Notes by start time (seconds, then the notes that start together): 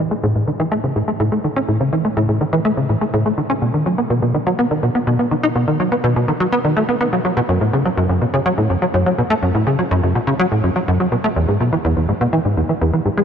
0.11 A3
0.23 A2
0.35 A2
0.48 D#3
0.60 E3
0.72 A3
0.84 C#3
0.96 A2
1.08 A3
1.20 A2
1.32 A3
1.44 D#3
1.56 C#4
1.68 A2
1.81 C#3
1.93 E3
2.05 A3
2.17 A2
2.29 A2
2.41 D#3
2.53 E3
2.65 A3
2.77 C#3
2.89 A2
3.01 A3
3.14 A2
3.26 A3
3.38 D#3
3.50 C#4
3.62 B2
3.74 D#3
3.86 F#3
3.98 B3
4.10 B2
4.22 B2
4.34 D#3
4.47 F#3
4.59 B3
4.71 D#3
4.83 B2
4.95 B3
5.07 B2
5.19 B3
5.31 D#3
5.43 D#4
5.55 B2
5.68 D#3
5.80 F#3
5.92 B3
6.04 B2
6.16 B2
6.28 D#3
6.40 F#3
6.52 B3
6.65 D#3
6.77 A3
6.89 B3
7.01 B3
7.13 F#3
7.25 F#3
7.37 B2
7.49 F#2
7.61 A2
7.73 C#3
7.85 F#3
7.97 F#2
8.09 F#2
8.21 B2
8.34 C#3
8.46 F#3
8.58 A2
8.70 F#2
8.82 F#3
8.94 F#2
9.06 F#3
9.18 B2
9.30 A3
9.42 F#2
9.55 A2
9.67 C#3
9.79 F#3
9.91 F#2
10.03 F#2
10.15 B2
10.27 C#3
10.39 F#3
10.52 A2
10.64 F#2
10.76 F#3
10.88 F#2
11.00 F#3
11.12 B2
11.24 A3
11.36 E2
11.48 G#2
11.61 B2
11.73 E3
11.85 E2
11.97 E2
12.09 G#2
12.21 B2
12.33 E3
12.45 G#2
12.57 E2
12.69 E3
12.81 E2
12.93 E3
13.05 G#2
13.17 G#3